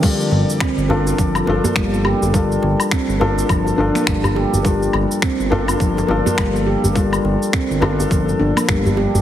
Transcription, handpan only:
X:1
M:4/4
L:1/16
Q:"Swing 16ths" 1/4=104
K:Gm
V:1 name="Handpan"
G,4 C z3 F, z D B, G, z G z | G,4 C z3 F, z D B, G, z G z | G,4 C z3 F, z D B, G, z G z | G,4 C z3 F, z D B, G, z G z |]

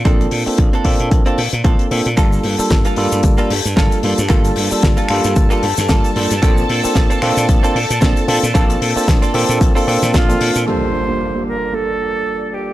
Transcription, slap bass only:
X:1
M:4/4
L:1/16
Q:"Swing 16ths" 1/4=113
K:Gm
V:1 name="Slap bass" clef=bass
B,,, z B,, z B,,, z B,, B,, B,,, z B,, B,, B,,, z B,, B,, | G,,, z G,, z G,,, z G,, G,, G,,, z G,, G,, G,,, z G,, G,, | G,,, z G,, z G,,, z G,, G,, G,,, z G,, G,, G,,, z G,, G,, | B,,, z B,, z B,,, z B,, B,, B,,, z B,, B,, B,,, z B,, B,, |
B,,, z B,, z B,,, z B,, B,, B,,, z B,, B,, B,,, z B,, B,, | z16 |]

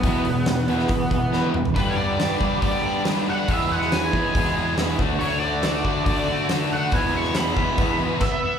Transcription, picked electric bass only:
X:1
M:4/4
L:1/16
Q:1/4=139
K:E
V:1 name="Picked electric bass" clef=bass
E,,8 E,8 | =G,,6 =G,2 G,8 | E,,6 E,, z E,,6 =D,,2 | =D,,6 =D,2 D,8 |
E,,6 E,, z E,,4 z4 |]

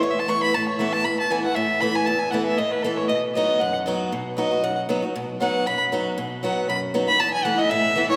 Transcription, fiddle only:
X:1
M:4/4
L:1/8
Q:"Swing" 1/4=234
K:Bmix
V:1 name="Fiddle"
(3c e a c' b a c e a | b a g f e2 b g | a g f e d B A c | d z d2 f z3 |
z2 d2 f z3 | z2 f2 b z3 | z2 f2 b z2 b | a g f d e3 c |]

